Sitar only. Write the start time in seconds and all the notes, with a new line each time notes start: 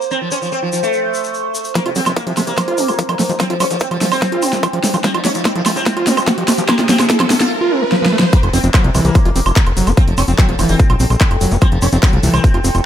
0.11 C4
0.21 F3
0.32 C#4
0.42 F3
0.52 C4
0.62 F3
0.73 F3
0.83 A3
1.75 A#3
1.86 C3
1.96 C4
2.06 C3
2.17 A#3
2.27 C3
2.37 C3
2.47 A#3
3.40 C4
3.50 F3
3.60 C#4
3.71 F3
3.81 C4
3.91 F3
4.01 F3
4.12 C4
5.04 C4
5.14 F3
5.25 C#4
5.35 F3
5.45 C4
5.55 F3
5.66 F3
5.76 C4
6.69 A#3
6.79 C3
6.89 C4
6.99 C3
7.10 E4
7.20 C3
7.30 C3
7.41 F4
8.33 A#3
8.43 C3
8.53 C4
8.64 C3
8.74 A#3
8.84 C3
8.95 C3
9.05 A#3
9.97 C4
10.08 F3
10.18 C#4
10.28 F3
10.38 C4
10.49 F3
10.59 F3
10.69 C4
11.62 C4
11.72 F3
11.82 C#4
11.93 F3
12.03 C4
12.13 F3
12.23 F3
12.34 C4